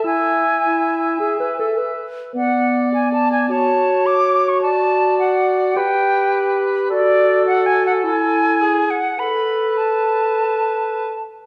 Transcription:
X:1
M:4/4
L:1/16
Q:1/4=105
K:A
V:1 name="Flute"
g12 z4 | f4 (3g2 a2 g2 a4 d'3 c' | a4 f4 =g6 z2 | d4 (3f2 g2 f2 g6 f2 |
b4 a8- a2 z2 |]
V:2 name="Cor anglais"
e12- e2 z2 | d8 c8 | d8 B8 | A12 G2 z2 |
B12- B2 z2 |]
V:3 name="Clarinet"
E4 E4 (3G2 B2 A2 B4 | B,8 F8- | F8 =G8 | F8 E6 z2 |
A12- A2 z2 |]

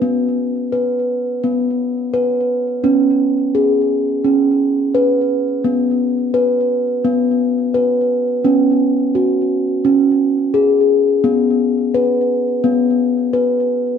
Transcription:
X:1
M:4/4
L:1/8
Q:1/4=86
K:F#mix
V:1 name="Steel tongue drum"
B,2 B2 B,2 B2 | C2 G2 C2 B2 | B,2 B2 B,2 B2 | C2 F2 C2 G2 |
B,2 B2 B,2 B2 |]
V:2 name="Steel tongue drum"
z8 | B,8 | z8 | B,8 |
z8 |]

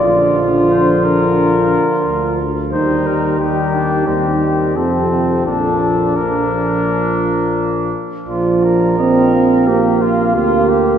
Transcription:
X:1
M:4/4
L:1/8
Q:1/4=88
K:Bb
V:1 name="Trumpet"
d z c B4 z | c B G2 G2 A2 | A2 B4- B z | d2 e f4- f |]
V:2 name="Trumpet"
F6- F z | E2 E D C2 C2 | D2 D4- D z | F B3 G F F G |]
V:3 name="French horn" clef=bass
F,6- F, z | G,2 G,2 G,2 F,2 | F,2 F,4- F, z | z4 G F G2 |]
V:4 name="Euphonium" clef=bass
D,6- D, z | E,2 E,2 E,2 C,2 | B,,2 B,,4- B,, z | F,2 C2 B,2 B,2 |]
V:5 name="Bass trombone" clef=bass
B,,,4- B,,, z D,,2 | E,,4 E,,2 F,,2 | B,,,6- B,,, z | B,,,6 D,,2 |]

